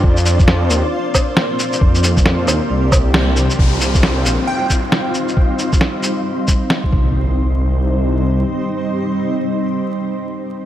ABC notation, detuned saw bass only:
X:1
M:4/4
L:1/8
Q:"Swing 16ths" 1/4=135
K:Cm
V:1 name="Detuned saw bass" clef=bass
F,,3 E,, z4 | F,,3 E,, C,,3 C,, | C,,3 B,,, z4 | z6 z C,,- |
C,,6 z2 | z8 |]